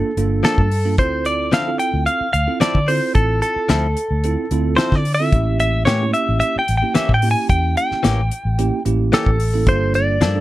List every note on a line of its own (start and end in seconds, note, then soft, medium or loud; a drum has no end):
0.00 0.10 A4 medium
0.00 0.44 A4 medium
0.17 0.41 G1 medium
0.17 0.67 A#3 medium
0.17 0.67 D4 medium
0.17 0.67 F4 medium
0.17 0.67 A4 medium
0.17 closed hi-hat medium
0.43 0.60 F3 medium
0.43 0.61 A#3 medium
0.43 0.61 D4 medium
0.43 0.61 A4 medium
0.43 0.95 A4 medium
0.43 snare loud
0.43 closed hi-hat medium
0.58 0.99 G2 medium
0.58 kick medium
0.71 open hi-hat medium
0.85 0.95 A#3 medium
0.85 0.95 D4 medium
0.85 0.95 F4 medium
0.85 0.95 A4 medium
0.98 1.53 D2 medium
0.98 1.48 C4 medium
0.98 1.48 E4 medium
0.98 1.48 F4 medium
0.98 1.48 A4 medium
0.98 1.24 C5 medium
0.98 kick medium
0.98 closed hi-hat medium
1.25 1.53 D5 medium
1.25 closed hi-hat medium
1.52 1.77 D3 medium
1.52 1.69 F3 medium
1.52 1.69 C4 medium
1.52 1.69 E4 medium
1.52 1.70 A4 medium
1.52 1.79 F5 medium
1.52 snare loud
1.52 closed hi-hat medium
1.67 2.26 C4 medium
1.67 2.26 E4 medium
1.67 2.26 F4 medium
1.67 2.26 A4 medium
1.79 2.06 G5 medium
1.79 closed hi-hat medium
1.94 2.06 D2 medium
2.06 2.32 F5 medium
2.06 closed hi-hat medium
2.21 muted fingered electric bass stroke soft
2.33 2.46 D2 medium
2.33 2.61 F5 medium
2.33 closed hi-hat medium
2.47 2.77 C4 medium
2.47 2.77 E4 medium
2.47 2.77 F4 medium
2.47 2.77 A4 medium
2.60 2.77 F3 medium
2.60 2.78 C4 medium
2.60 2.78 E4 medium
2.60 2.78 A4 medium
2.60 2.89 D5 medium
2.60 muted fingered electric bass stroke soft
2.60 snare loud
2.60 closed hi-hat medium
2.75 2.99 D3 medium
2.75 kick medium
2.88 3.67 C4 medium
2.88 3.67 E4 medium
2.88 3.67 F4 medium
2.88 3.67 A4 medium
2.88 3.13 C5 medium
2.88 open hi-hat medium
3.15 3.40 A1 medium
3.15 3.41 A4 medium
3.15 kick loud
3.15 closed hi-hat medium
3.42 4.74 A4 medium
3.42 closed hi-hat medium
3.56 muted fingered electric bass stroke soft
3.69 3.94 D2 medium
3.69 3.86 F3 medium
3.69 3.86 C4 medium
3.69 3.86 E4 medium
3.69 3.87 A4 medium
3.69 snare loud
3.69 closed hi-hat medium
3.97 closed hi-hat medium
4.11 4.35 D2 medium
4.24 4.44 C4 medium
4.24 4.44 E4 medium
4.24 4.44 F4 medium
4.24 4.44 A4 medium
4.24 closed hi-hat medium
4.51 4.75 D2 medium
4.51 5.01 C4 medium
4.51 5.01 E4 medium
4.51 5.01 F4 medium
4.51 5.01 A4 medium
4.51 closed hi-hat medium
4.77 4.94 F3 medium
4.77 4.95 C4 medium
4.77 4.95 E4 medium
4.77 4.95 A4 medium
4.77 4.95 C5 medium
4.77 snare loud
4.77 closed hi-hat medium
4.92 5.34 D3 medium
4.92 5.14 D5 medium
4.92 kick medium
4.92 snare soft
5.05 open hi-hat medium
5.14 5.59 E5 medium
5.20 5.29 C4 medium
5.20 5.29 E4 medium
5.20 5.29 F4 medium
5.20 5.29 A4 medium
5.32 5.88 A1 medium
5.32 5.83 A#3 medium
5.32 5.83 C#4 medium
5.32 5.83 E4 medium
5.32 5.82 G4 medium
5.32 kick medium
5.32 closed hi-hat medium
5.60 5.85 E5 medium
5.60 closed hi-hat medium
5.85 6.12 A2 medium
5.85 6.03 E3 medium
5.85 6.03 A#3 medium
5.85 6.03 C#4 medium
5.85 6.04 G4 medium
5.85 6.11 C#5 medium
5.85 snare loud
5.85 closed hi-hat medium
6.01 6.60 A#3 medium
6.01 6.60 C#4 medium
6.01 6.60 E4 medium
6.01 6.60 G4 medium
6.14 6.39 E5 medium
6.14 closed hi-hat medium
6.29 6.40 A1 medium
6.40 6.58 E5 medium
6.40 closed hi-hat medium
6.56 6.76 G5 loud
6.56 muted fingered electric bass stroke soft
6.68 6.81 A1 medium
6.68 closed hi-hat medium
6.77 6.95 G5 medium
6.82 7.12 A#3 medium
6.82 7.12 C#4 medium
6.82 7.12 E4 medium
6.82 7.12 G4 medium
6.95 7.12 E3 medium
6.95 7.12 A#3 medium
6.95 7.12 C#4 medium
6.95 7.12 G4 medium
6.95 7.14 E5 medium
6.95 muted fingered electric bass stroke soft
6.95 snare loud
6.95 closed hi-hat medium
7.09 7.33 A2 medium
7.09 kick medium
7.14 7.31 G5 medium
7.22 8.02 A#3 medium
7.22 8.02 C#4 medium
7.22 8.02 E4 medium
7.22 8.02 G4 medium
7.22 open hi-hat medium
7.31 7.49 G#5 medium
7.49 7.74 E2 medium
7.49 7.75 G5 loud
7.49 kick loud
7.49 closed hi-hat medium
7.77 8.82 G5 medium
7.77 closed hi-hat medium
7.91 muted fingered electric bass stroke soft
7.91 snare soft
8.03 8.29 A1 medium
8.03 8.20 E3 medium
8.03 8.21 A#3 medium
8.03 8.21 C#4 medium
8.03 8.21 G4 medium
8.03 snare loud
8.03 closed hi-hat medium
8.31 closed hi-hat medium
8.45 8.69 A1 medium
8.58 8.78 A#3 medium
8.58 8.78 C#4 medium
8.58 8.79 E4 medium
8.58 8.79 G4 medium
8.58 closed hi-hat medium
8.85 9.10 A1 medium
8.85 9.35 A#3 medium
8.85 9.35 C#4 medium
8.85 9.35 E4 medium
8.85 9.35 G4 medium
8.85 closed hi-hat medium
9.12 9.29 E3 medium
9.12 9.29 A#3 medium
9.12 9.30 C#4 medium
9.12 9.30 G4 medium
9.12 9.69 A4 medium
9.12 snare loud
9.12 closed hi-hat medium
9.26 9.68 A1 medium
9.26 kick medium
9.40 open hi-hat medium
9.54 9.63 A#3 medium
9.54 9.63 C#4 medium
9.54 9.63 E4 medium
9.54 9.63 A4 medium
9.66 10.22 G1 medium
9.66 10.16 A#3 medium
9.66 10.16 D4 medium
9.66 10.17 F4 medium
9.66 10.17 A4 medium
9.66 9.93 C5 medium
9.66 kick loud
9.66 closed hi-hat medium
9.94 10.40 D5 loud
9.94 closed hi-hat medium
10.21 10.40 G2 medium
10.21 10.38 F3 medium
10.21 10.38 A#3 medium
10.21 10.38 D4 medium
10.21 10.38 A4 medium
10.21 snare loud
10.21 closed hi-hat medium
10.35 10.40 A#3 medium
10.35 10.40 D4 medium
10.35 10.40 F4 medium
10.35 10.40 A4 medium